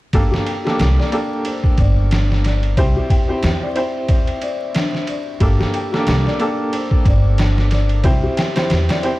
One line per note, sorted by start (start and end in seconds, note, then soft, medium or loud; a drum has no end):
0.13 0.30 G1 medium
0.13 0.61 A#3 medium
0.13 0.61 D4 medium
0.13 0.30 G4 medium
0.13 0.61 G4 medium
0.13 0.61 A4 medium
0.13 kick loud
0.13 ride medium
0.31 0.45 G4 medium
0.31 snare medium
0.46 0.63 G5 medium
0.46 ride medium
0.65 1.09 A#3 medium
0.65 1.10 D4 medium
0.65 0.79 G4 medium
0.65 1.10 G4 medium
0.65 1.10 A4 medium
0.65 snare soft
0.79 0.96 C2 medium
0.79 snare loud
0.79 ride medium
0.98 1.11 D5 medium
0.98 snare soft
1.12 2.74 A#3 medium
1.12 2.74 D4 medium
1.12 2.74 G4 medium
1.12 2.75 A4 medium
1.12 1.44 D5 medium
1.12 ride medium
1.45 1.77 C5 medium
1.45 ride medium
1.64 kick medium
1.78 2.74 G1 medium
1.78 1.96 D5 medium
1.78 kick medium
1.78 ride medium
2.11 2.43 D4 medium
2.11 snare loud
2.11 ride medium
2.32 snare soft
2.44 2.76 D5 medium
2.44 snare soft
2.44 ride medium
2.63 ride soft
2.77 2.94 C2 medium
2.77 3.24 C4 medium
2.77 3.25 E4 medium
2.77 2.95 G4 medium
2.77 3.25 G4 medium
2.77 3.25 C5 medium
2.77 kick medium
2.77 ride medium
2.97 3.09 G4 medium
3.10 3.27 G5 medium
3.10 kick medium
3.10 ride medium
3.29 3.73 C4 medium
3.29 3.73 E4 medium
3.29 3.73 G4 medium
3.29 3.43 G4 medium
3.29 3.73 C5 medium
3.43 3.60 E2 medium
3.43 snare loud
3.43 ride medium
3.62 3.75 D5 medium
3.75 5.37 C4 medium
3.75 5.37 E4 medium
3.75 5.38 G4 medium
3.75 5.38 C5 medium
3.75 4.08 D5 medium
3.75 ride medium
4.08 4.41 C5 medium
4.08 kick loud
4.08 ride medium
4.27 ride soft
4.42 4.60 D5 medium
4.42 ride medium
4.75 5.06 D4 medium
4.75 snare loud
4.75 ride medium
4.95 snare soft
5.07 5.40 D5 medium
5.07 ride medium
5.40 5.57 G1 medium
5.40 5.88 A#3 medium
5.40 5.89 D4 medium
5.40 5.57 G4 medium
5.40 5.89 G4 medium
5.40 5.89 A4 medium
5.40 kick medium
5.40 ride medium
5.60 5.73 G4 medium
5.60 snare medium
5.74 5.91 G5 medium
5.74 ride medium
5.93 6.37 A#3 medium
5.93 6.37 D4 medium
5.93 6.06 G4 medium
5.93 6.37 G4 medium
5.93 6.37 A4 medium
5.93 snare soft
6.07 6.23 C2 medium
6.07 snare loud
6.07 ride medium
6.26 6.38 D5 medium
6.26 snare soft
6.39 8.01 A#3 medium
6.39 8.01 D4 medium
6.39 8.02 G4 medium
6.39 8.02 A4 medium
6.39 6.71 D5 medium
6.39 ride medium
6.73 7.05 C5 medium
6.73 ride medium
6.91 kick medium
7.05 8.02 G1 medium
7.05 7.24 D5 medium
7.05 kick medium
7.05 ride medium
7.38 7.70 D4 medium
7.38 snare loud
7.38 ride medium
7.58 snare soft
7.71 8.03 D5 medium
7.71 snare soft
7.71 ride medium
7.89 ride soft
8.04 8.21 C2 medium
8.04 8.51 C4 medium
8.04 8.52 E4 medium
8.04 8.52 G4 medium
8.04 8.22 G4 medium
8.04 8.52 C5 medium
8.04 kick loud
8.04 ride medium
8.23 8.36 G4 medium
8.37 8.54 G5 medium
8.37 snare medium
8.37 ride medium
8.56 9.00 C4 medium
8.56 9.00 E4 medium
8.56 9.00 G4 medium
8.56 8.70 G4 medium
8.56 9.00 C5 medium
8.56 snare medium
8.56 ride medium
8.70 8.87 E2 medium
8.70 snare loud
8.70 ride medium
8.89 9.02 D5 medium
8.89 snare medium
8.89 ride medium
9.03 9.19 C4 medium
9.03 9.19 E4 medium
9.03 9.19 G4 medium
9.03 9.19 C5 medium
9.03 9.19 D5 medium
9.03 ride medium